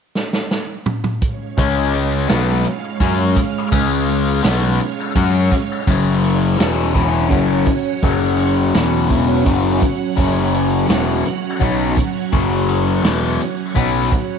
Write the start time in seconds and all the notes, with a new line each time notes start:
0.15 snare
0.33 snare
0.51 snare
0.86 mid tom
1.04 mid tom
1.20 G#3 C#4 C#5 F5, kick, closed hi-hat, maracas
1.57 C#2 C#3 G#3 C#4, kick, closed hi-hat
1.77 maracas
1.93 closed hi-hat, maracas
2.29 B1 B2 F#3 B3, snare, closed hi-hat, maracas
2.65 closed hi-hat, maracas
2.83 maracas
3.00 F#2 F#3 C#4 F#4, kick, closed hi-hat
3.19 maracas
3.36 kick, closed hi-hat, maracas
3.72 C#2 C#3 G#3 C#4, kick, closed hi-hat
3.91 maracas
4.08 closed hi-hat, maracas
4.43 B1 B2 F#3 B3, snare, closed hi-hat, maracas
4.80 closed hi-hat, maracas
4.99 maracas
5.15 F#2 F#3 C#4 F#4, kick, closed hi-hat
5.34 maracas
5.51 kick, closed hi-hat, maracas
5.86 F#1 F#2 C#3 F#3 F#5, kick, closed hi-hat
6.06 maracas
6.24 closed hi-hat, maracas
6.58 E1 E2 B2 E3, snare, closed hi-hat, maracas
6.94 E1 E2 B2 E3, kick, closed hi-hat, maracas
7.13 maracas
7.30 F#1 F#2 C#3 F#3, kick, closed hi-hat
7.48 maracas
7.65 kick, closed hi-hat, maracas
7.84 maracas
8.03 F#1 F#2 C#3 F#3, kick, closed hi-hat
8.37 closed hi-hat, maracas
8.74 E1 E2 B2 E3, snare, closed hi-hat
8.92 maracas
9.09 E1 E2 B2 E3, kick, closed hi-hat, maracas
9.27 maracas
9.45 F#1 F#2 C#3 F#3, kick, closed hi-hat
9.64 maracas
9.81 kick, closed hi-hat, maracas
10.16 F#1 F#2 C#3 F#3, kick, closed hi-hat
10.36 maracas
10.54 closed hi-hat, maracas
10.88 E1 E2 B2 E3, snare, closed hi-hat, maracas
11.25 closed hi-hat, maracas
11.43 maracas
11.60 B1 B2 F#3 B3, kick, closed hi-hat
11.97 kick, closed hi-hat, maracas
12.33 F#1 F#2 C#3 F#3, kick, closed hi-hat
12.51 maracas
12.69 closed hi-hat, maracas
13.03 E1 E2 B2 E3, snare, closed hi-hat, maracas
13.40 closed hi-hat, maracas
13.59 maracas
13.75 B1 B2 F#3 B3, kick, closed hi-hat
13.94 maracas
14.12 kick, closed hi-hat, maracas